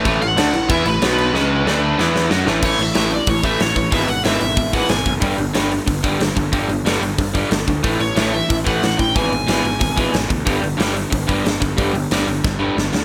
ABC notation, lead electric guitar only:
X:1
M:4/4
L:1/16
Q:1/4=184
K:A
V:1 name="Lead electric guitar"
z2 f6 e2 B6- | B12 z4 | [K:Amix] c2 e4 d2 c2 e2 c2 c2 | e2 f2 e2 e4 f2 ^g3 z |
z16 | z16 | z2 c4 e2 e2 f4 g2 | ^g12- g2 z2 |
z16 | z16 |]